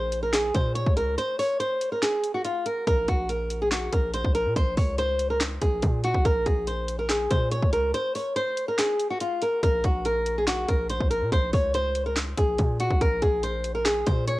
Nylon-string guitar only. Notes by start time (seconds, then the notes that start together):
Already playing: C5
0.23 A#4
0.33 G#4
0.55 C5
0.75 C#5
0.97 A#4
1.18 C5
1.39 C#5
1.60 C5
1.92 A#4
2.03 G#4
2.34 F#4
2.45 F4
2.66 A#4
2.87 A#4
3.09 F#4
3.29 A#4
3.62 G#4
3.71 F#4
3.92 A#4
4.14 C5
4.35 A#4
4.57 C5
4.78 C#5
4.99 C5
5.30 A#4
5.62 G#4
6.04 F#4
6.25 A#4
6.46 G#4
6.67 C5
6.99 A#4
7.09 G#4
7.31 C5
7.52 C#5
7.73 A#4
7.94 C5
8.15 C#5
8.36 C5
8.68 A#4
8.79 G#4
9.10 F#4
9.21 F4
9.42 A#4
9.63 A#4
9.85 F#4
10.05 A#4
10.38 G#4
10.47 F#4
10.68 A#4
10.90 C5
11.10 A#4
11.33 C5
11.54 C#5
11.74 C5
12.06 A#4
12.37 G#4
12.80 F#4
13.01 A#4
13.22 G#4
13.43 C5
13.75 A#4
13.85 G#4
14.07 C5
14.28 C#5